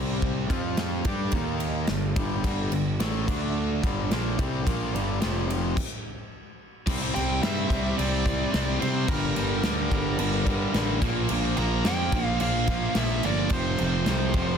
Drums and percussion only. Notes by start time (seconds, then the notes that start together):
0.22 kick
0.50 kick, ride
0.77 snare, ride
1.05 kick, ride
1.32 kick, ride
1.60 ride
1.87 snare, ride
2.16 kick, ride
2.44 kick, crash
2.72 ride
3.00 snare, ride
3.28 kick, crash
3.84 kick, ride
4.11 snare, ride
4.39 kick, ride
4.67 kick, ride
4.96 ride
5.22 snare, ride
5.50 ride
5.77 kick, crash
6.87 kick, crash
7.16 snare, crash
7.43 snare, crash
7.70 kick, crash
7.99 crash
8.26 kick, crash
8.54 snare, crash
8.82 crash
9.08 kick, crash
9.36 snare, crash
9.63 snare, crash
9.91 kick, crash
10.19 crash
10.47 kick, crash
10.74 snare, crash
11.02 kick, crash
11.29 crash
11.57 crash
11.85 snare, crash
12.12 kick, crash
12.40 crash
12.67 kick, crash
12.95 snare, crash
13.23 crash
13.50 kick, crash
13.78 crash
14.06 snare, crash
14.34 kick, crash